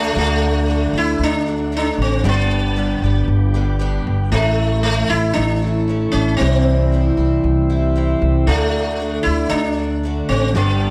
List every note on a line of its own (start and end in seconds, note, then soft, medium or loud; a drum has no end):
0.00 0.14 D2 medium
0.00 0.15 D3 medium
0.00 0.14 A3 medium
0.00 0.15 A3 medium
0.00 0.16 A3 medium
0.00 0.16 A3 loud
0.00 0.14 D4 medium
0.00 0.15 D4 medium
0.00 0.16 D4 medium
0.00 0.14 F#4 medium
0.00 0.15 F#4 medium
0.00 0.17 F#4 medium
0.00 shaker soft
0.16 0.86 D2 medium
0.16 0.67 D3 medium
0.16 0.68 A3 medium
0.16 2.23 A3 medium
0.16 0.98 A3 medium
0.16 2.22 D4 medium
0.16 0.70 D4 medium
0.16 2.22 F#4 medium
0.16 0.69 F#4 medium
0.68 0.94 D3 medium
0.68 0.95 A3 medium
0.68 0.94 D4 medium
0.68 0.92 F#4 medium
0.93 1.17 D2 medium
0.93 1.47 A3 soft
0.93 1.47 D4 soft
0.93 1.45 F#4 medium
0.98 1.23 E4 medium
1.19 1.89 D2 medium
1.23 1.75 D4 medium
1.46 1.71 A3 soft
1.46 1.72 D4 soft
1.46 1.72 F#4 soft
1.72 2.23 D3 medium
1.72 2.24 A3 medium
1.72 2.24 D4 medium
1.72 2.25 F#4 medium
1.77 2.01 D4 medium
1.98 2.21 A1 medium
1.98 2.27 C4 medium
2.24 2.94 G1 medium
2.24 2.76 G2 medium
2.24 2.76 D3 medium
2.24 2.75 G3 medium
2.24 4.30 B3 medium
2.24 2.76 B3 medium
2.24 4.30 D4 medium
2.24 2.77 D4 medium
2.24 4.30 G4 medium
2.24 2.77 G4 medium
2.29 3.26 B3 medium
2.76 3.02 G3 medium
2.76 3.03 B3 medium
2.76 3.03 D4 medium
2.76 3.02 G4 medium
3.02 3.25 G1 medium
3.02 3.55 G3 soft
3.02 3.55 B3 medium
3.02 3.54 D4 medium
3.02 3.53 G4 medium
3.28 3.98 G1 medium
3.54 3.78 G3 soft
3.54 3.79 B3 medium
3.54 3.80 D4 medium
3.54 3.80 G4 medium
3.79 4.32 G3 medium
3.79 4.32 B3 medium
3.79 4.33 D4 medium
3.79 4.33 G4 medium
4.07 4.30 G1 medium
4.32 5.02 A1 medium
4.32 4.84 A2 medium
4.32 4.83 E3 medium
4.32 4.82 A3 medium
4.32 4.83 A3 medium
4.32 6.39 A3 medium
4.32 4.84 C#4 medium
4.32 6.39 E4 medium
4.32 4.86 E4 medium
4.32 6.39 C#5 medium
4.83 5.10 E3 medium
4.83 5.10 A3 medium
4.83 5.11 C#4 medium
4.83 5.09 E4 medium
5.09 5.34 A1 medium
5.09 5.63 A3 soft
5.09 5.63 C#4 soft
5.09 5.34 E4 medium
5.09 5.61 E4 soft
5.33 6.06 A1 medium
5.33 6.09 D4 medium
5.62 5.88 A3 soft
5.62 5.88 C#4 soft
5.62 5.88 E4 medium
5.88 6.40 E3 soft
5.88 6.40 A3 medium
5.88 6.41 C#4 medium
5.88 6.41 E4 medium
6.12 6.37 A1 medium
6.12 6.36 C#4 medium
6.37 7.10 C2 medium
6.37 7.38 C4 medium
6.41 6.92 C3 medium
6.41 6.91 E3 medium
6.41 6.92 G3 medium
6.41 8.46 G3 medium
6.41 6.93 C4 medium
6.41 8.47 C4 medium
6.41 8.46 E4 medium
6.41 6.93 E4 medium
6.92 7.18 E3 medium
6.92 7.19 G3 medium
6.92 7.18 C4 medium
6.92 7.16 E4 medium
7.17 7.41 C2 medium
7.17 7.71 G3 soft
7.17 7.69 C4 medium
7.17 7.68 E4 medium
7.44 8.13 C2 medium
7.70 7.95 G3 soft
7.70 7.96 C4 medium
7.70 7.95 E4 medium
7.95 8.47 E3 medium
7.95 8.48 G3 medium
7.95 8.48 C4 medium
7.95 8.48 E4 medium
8.22 8.45 C2 medium
8.47 9.17 D2 medium
8.47 8.98 D3 medium
8.47 9.27 A3 medium
8.47 10.53 A3 medium
8.47 8.99 A3 medium
8.47 10.53 D4 medium
8.47 9.01 D4 medium
8.47 10.53 F#4 medium
8.47 9.00 F#4 medium
9.00 9.25 D3 medium
9.00 9.26 A3 medium
9.00 9.25 D4 medium
9.00 9.24 F#4 medium
9.23 9.49 D2 medium
9.23 9.77 D4 soft
9.23 9.51 E4 medium
9.23 9.76 F#4 soft
9.28 9.78 A3 soft
9.50 10.21 D2 medium
9.50 10.28 D4 loud
9.77 10.04 A3 soft
9.77 10.04 D4 soft
9.77 10.03 F#4 soft
10.03 10.54 D3 soft
10.03 10.56 A3 medium
10.03 10.55 D4 medium
10.03 10.56 F#4 medium
10.29 10.52 A1 medium
10.29 10.55 C4 medium
10.55 10.90 G1 medium
10.55 10.90 G2 medium
10.55 10.90 D3 medium
10.55 10.90 G3 medium
10.55 10.90 B3 medium
10.55 10.90 D4 medium
10.55 10.90 G4 medium